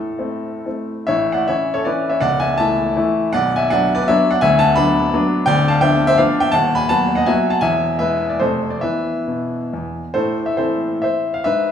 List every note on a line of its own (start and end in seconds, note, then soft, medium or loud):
0.00 0.16 A2 medium
0.00 0.88 A4 medium
0.19 0.62 A3 soft
0.19 0.62 C4 soft
0.19 0.62 E4 soft
0.66 1.05 A3 soft
0.66 1.05 C4 soft
0.66 1.05 E4 soft
1.07 1.46 A1 medium
1.07 1.47 A2 medium
1.07 1.32 C#5 medium
1.07 1.33 E5 loud
1.32 1.47 D5 medium
1.32 1.47 F#5 medium
1.48 1.83 E3 medium
1.48 1.83 C#4 medium
1.48 1.83 E4 medium
1.48 1.72 C#5 medium
1.48 1.74 E5 medium
1.74 1.86 A4 medium
1.74 1.86 C#5 loud
1.85 2.19 E3 medium
1.85 2.19 C#4 medium
1.85 2.19 E4 medium
1.85 2.09 B4 medium
1.85 2.10 D5 medium
2.09 2.22 C#5 medium
2.09 2.22 E5 medium
2.21 2.57 C#1 medium
2.21 2.57 C#2 medium
2.21 2.38 D5 loud
2.21 2.39 F#5 loud
2.40 2.58 E5 medium
2.40 2.59 G#5 loud
2.58 2.93 E3 medium
2.58 2.93 A3 medium
2.58 2.93 E4 medium
2.58 3.30 E5 medium
2.58 3.32 A5 loud
2.96 3.29 E3 medium
2.96 3.30 A3 medium
2.96 3.30 E4 medium
3.33 3.70 B0 medium
3.33 3.70 B1 medium
3.33 3.56 D5 medium
3.33 3.57 F#5 loud
3.56 3.69 E5 medium
3.56 3.70 G#5 loud
3.70 4.04 F#3 medium
3.70 4.05 B3 medium
3.70 4.05 D4 medium
3.70 3.93 D5 medium
3.70 3.95 F#5 loud
3.95 4.07 B4 medium
3.95 4.07 D5 loud
4.08 4.39 F#3 medium
4.08 4.39 B3 medium
4.08 4.39 D4 medium
4.08 4.29 C#5 medium
4.08 4.31 E5 loud
4.31 4.41 D5 medium
4.31 4.42 F#5 loud
4.41 4.76 D1 medium
4.41 4.76 D2 loud
4.41 4.58 E5 loud
4.41 4.58 G#5 loud
4.59 4.75 F#5 loud
4.59 4.77 A5 loud
4.76 5.10 F#3 medium
4.76 5.10 B3 medium
4.76 5.10 D4 medium
4.76 5.43 F#5 loud
4.76 5.47 B5 loud
5.14 5.44 F#3 medium
5.14 5.44 B3 medium
5.14 5.45 D4 medium
5.46 5.81 D1 medium
5.46 5.81 D2 loud
5.46 5.69 D5 loud
5.46 5.69 G5 loud
5.68 5.81 F5 medium
5.68 5.81 A5 loud
5.81 6.15 F3 medium
5.81 6.15 B3 medium
5.81 6.15 D4 medium
5.81 6.05 E5 medium
5.81 6.06 G5 loud
6.07 6.18 C5 medium
6.07 6.19 E5 loud
6.18 6.50 F3 medium
6.18 6.50 B3 medium
6.18 6.50 D4 medium
6.18 6.40 D5 medium
6.18 6.41 F5 loud
6.40 6.52 E5 medium
6.40 6.52 G5 loud
6.52 6.89 D#1 medium
6.52 6.89 D#2 medium
6.52 6.75 F#5 loud
6.52 6.76 A5 loud
6.75 6.88 G#5 medium
6.75 6.89 B5 loud
6.89 7.24 F#3 medium
6.89 7.24 B3 medium
6.89 7.24 F#4 medium
6.89 7.14 F#5 medium
6.89 7.15 A5 loud
7.15 7.27 D#5 medium
7.15 7.27 F#5 loud
7.26 7.59 F#3 medium
7.26 7.59 B3 medium
7.26 7.59 F#4 medium
7.26 7.49 E5 medium
7.26 7.50 G#5 loud
7.50 7.62 F#5 medium
7.50 7.62 A5 loud
7.61 7.99 E1 medium
7.61 7.99 E2 medium
7.61 7.97 E5 loud
7.61 7.99 G#5 loud
7.99 8.36 G#3 medium
7.99 8.36 B3 medium
7.99 8.36 E4 medium
7.99 8.28 B4 medium
7.99 8.29 E5 loud
8.29 8.40 D5 medium
8.40 8.80 F1 medium
8.40 8.80 F2 medium
8.40 8.77 A3 soft
8.40 8.69 A4 medium
8.40 8.70 C5 medium
8.70 8.81 D5 medium
8.81 9.14 E3 medium
8.81 9.18 B3 soft
8.81 9.18 E4 medium
8.81 9.90 B4 medium
8.81 9.93 E5 loud
9.28 9.59 B2 medium
9.73 10.02 E2 medium
10.14 10.57 A2 medium
10.14 10.45 A4 medium
10.14 10.47 C5 medium
10.46 10.58 E5 medium
10.57 11.40 E3 soft
10.57 11.40 C4 soft
10.57 11.40 E4 medium
10.57 10.99 A4 medium
10.57 11.02 C5 medium
11.02 11.32 C5 medium
11.02 11.33 E5 medium
11.34 11.44 F5 medium
11.44 11.72 G#2 medium
11.44 11.72 B4 medium
11.44 11.72 E5 loud